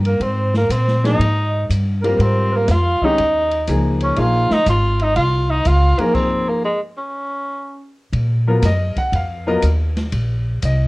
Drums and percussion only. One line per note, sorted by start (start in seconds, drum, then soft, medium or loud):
0.05 ride soft
0.21 ride medium
0.54 snare soft
0.70 hi-hat pedal medium
0.70 ride medium
0.88 snare soft
1.04 snare soft
1.04 ride soft
1.21 ride medium
1.70 hi-hat pedal medium
1.70 ride medium
2.04 ride soft
2.20 ride soft
2.68 snare soft
2.68 hi-hat pedal medium
2.68 ride medium
3.02 kick soft
3.18 ride medium
3.51 ride soft
3.67 hi-hat pedal medium
3.67 ride medium
4.00 ride soft
4.16 ride medium
4.51 snare medium
4.66 hi-hat pedal medium
4.66 ride medium
4.99 ride soft
5.16 ride soft
5.65 hi-hat pedal medium
5.65 ride medium
5.99 ride soft
6.15 kick medium
6.15 crash medium
8.13 ride medium
8.62 snare soft
8.62 hi-hat pedal medium
8.62 ride medium
8.96 kick soft
8.96 ride soft
9.13 ride medium
9.62 hi-hat pedal medium
9.62 ride medium
9.97 snare soft
9.97 ride soft
10.12 ride medium
10.62 hi-hat pedal medium
10.62 ride medium